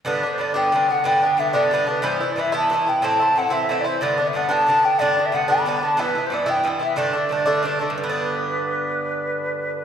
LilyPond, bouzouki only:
\new Staff \with { instrumentName = "Bouzouki" } { \time 6/8 \key g \major \tempo 4. = 122 <g, d b d'>8 <d b d'>8 <g, d b d'>8 <g, d b d'>8 <g, d b d'>8 <d b d'>8 | <g, d b d'>8 <d b d'>8 <g, d b d'>8 <g, d b d'>8 <g, d b d'>8 <d b d'>8 | <g, e b e'>8 <e b e'>8 <g, e b e'>8 <g, e b e'>8 <g, e b e'>8 <e b e'>8 | <a, e c' e'>8 <e c' e'>8 <a, e c' e'>8 <a, e c' e'>8 <a, e c' e'>8 <e c' e'>8 |
<g, d b d'>8 <d b d'>8 <g, d b d'>8 <g, d b d'>8 <g, d b d'>8 <d b d'>8 | <g, d b d'>8 <d b d'>8 <g, d b d'>8 <g, d b d'>8 <g, d b d'>8 <d b d'>8 | <g, e b e'>8 <e b e'>8 <g, e b e'>8 <g, e b e'>8 <g, e b e'>8 <e b e'>8 | <g, d a d'>8 <d a d'>8 <g, d a d'>8 <g, d a d'>8 <g, d a d'>8 <d a d'>8 |
<g, d b d'>2.~ | <g, d b d'>2. | }